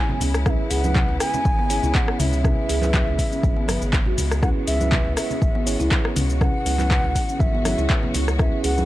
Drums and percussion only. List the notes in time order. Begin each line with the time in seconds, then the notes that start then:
0.09 high conga, low conga
0.21 open hi-hat, muted conga, low conga, shaker
0.34 cross-stick, shaker
0.46 kick, cross-stick, muted conga, high conga, shaker
0.71 open hi-hat, muted conga, shaker
0.84 high conga, shaker
0.95 kick, clap, mid tom, high conga, shaker
1.09 muted conga
1.20 cross-stick, open hi-hat, shaker
1.34 muted conga, low conga, shaker
1.45 kick, shaker
1.59 muted conga
1.70 open hi-hat, shaker
1.83 muted conga, low conga, shaker
1.95 kick, clap, high conga, shaker
2.08 cross-stick
2.19 open hi-hat, mid tom, muted conga, low conga, shaker
2.33 shaker
2.44 kick, cross-stick, mid tom, muted conga, high conga, shaker
2.69 open hi-hat, muted conga, shaker
2.82 clap, high conga, shaker
2.94 kick, clap, mid tom, high conga, shaker
3.07 muted conga
3.19 kick, open hi-hat, shaker
3.32 muted conga, shaker
3.43 kick, high conga, shaker
3.56 muted conga
3.68 cross-stick, open hi-hat, high conga, shaker
3.81 muted conga, shaker
3.93 kick, clap, shaker
4.06 high conga, low conga
4.18 open hi-hat, muted conga, low conga, shaker
4.31 cross-stick, shaker
4.43 kick, cross-stick, muted conga, high conga, shaker
4.67 open hi-hat, muted conga, shaker
4.80 high conga, shaker
4.91 kick, clap, mid tom, high conga, shaker
5.05 muted conga
5.17 cross-stick, open hi-hat, shaker
5.30 muted conga, low conga, shaker
5.42 kick, shaker
5.55 muted conga
5.67 open hi-hat, shaker
5.79 muted conga, low conga, shaker
5.91 kick, clap, high conga, shaker
6.05 cross-stick
6.16 open hi-hat, mid tom, muted conga, low conga, shaker
6.30 shaker
6.41 kick, cross-stick, mid tom, muted conga, high conga, shaker
6.66 open hi-hat, muted conga, shaker
6.79 clap, high conga, shaker
6.91 kick, clap, mid tom, high conga, shaker
7.04 muted conga
7.15 kick, open hi-hat, shaker
7.29 muted conga, shaker
7.39 kick, high conga, shaker
7.55 muted conga
7.65 cross-stick, open hi-hat, high conga, shaker
7.78 muted conga, shaker
7.90 kick, clap, shaker
8.03 high conga, low conga
8.14 open hi-hat, muted conga, low conga, shaker
8.28 cross-stick, shaker
8.39 kick, cross-stick, muted conga, high conga, shaker
8.64 open hi-hat, muted conga, shaker
8.78 high conga, shaker